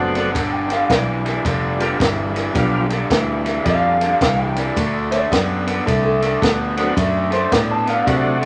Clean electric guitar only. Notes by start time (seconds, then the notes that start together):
Already playing: A5
0.53 G5
0.73 F5
0.90 D5
3.65 F5
4.21 F5
4.39 G5
4.56 D5
5.12 D5
5.86 A4
6.05 A4
7.33 C5
7.52 D5
7.72 A5
7.90 F5
8.07 F#5